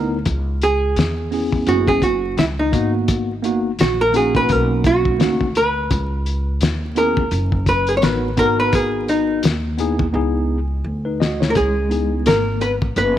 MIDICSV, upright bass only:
0, 0, Header, 1, 2, 480
1, 0, Start_track
1, 0, Tempo, 705882
1, 176, Time_signature, 4, 2, 24, 8
1, 8966, End_track
2, 0, Start_track
2, 0, Title_t, "Upright bass"
2, 0, Program_c, 0, 32
2, 0, Note_on_c, 0, 38, 99
2, 151, Note_off_c, 0, 38, 0
2, 176, Note_on_c, 0, 37, 101
2, 632, Note_off_c, 0, 37, 0
2, 654, Note_on_c, 0, 40, 94
2, 1111, Note_off_c, 0, 40, 0
2, 1134, Note_on_c, 0, 30, 102
2, 1591, Note_off_c, 0, 30, 0
2, 1613, Note_on_c, 0, 37, 99
2, 1843, Note_off_c, 0, 37, 0
2, 1856, Note_on_c, 0, 32, 82
2, 2549, Note_off_c, 0, 32, 0
2, 2576, Note_on_c, 0, 34, 87
2, 3032, Note_off_c, 0, 34, 0
2, 3057, Note_on_c, 0, 35, 104
2, 3513, Note_off_c, 0, 35, 0
2, 3536, Note_on_c, 0, 38, 91
2, 3992, Note_off_c, 0, 38, 0
2, 4016, Note_on_c, 0, 37, 112
2, 4472, Note_off_c, 0, 37, 0
2, 4495, Note_on_c, 0, 39, 92
2, 4951, Note_off_c, 0, 39, 0
2, 4975, Note_on_c, 0, 30, 108
2, 5431, Note_off_c, 0, 30, 0
2, 5456, Note_on_c, 0, 33, 84
2, 5684, Note_off_c, 0, 33, 0
2, 5695, Note_on_c, 0, 32, 85
2, 6388, Note_off_c, 0, 32, 0
2, 6417, Note_on_c, 0, 39, 94
2, 6873, Note_off_c, 0, 39, 0
2, 6894, Note_on_c, 0, 37, 94
2, 7351, Note_off_c, 0, 37, 0
2, 7374, Note_on_c, 0, 38, 92
2, 7831, Note_off_c, 0, 38, 0
2, 7855, Note_on_c, 0, 37, 90
2, 8312, Note_off_c, 0, 37, 0
2, 8335, Note_on_c, 0, 32, 82
2, 8792, Note_off_c, 0, 32, 0
2, 8814, Note_on_c, 0, 30, 96
2, 8966, Note_off_c, 0, 30, 0
2, 8966, End_track
0, 0, End_of_file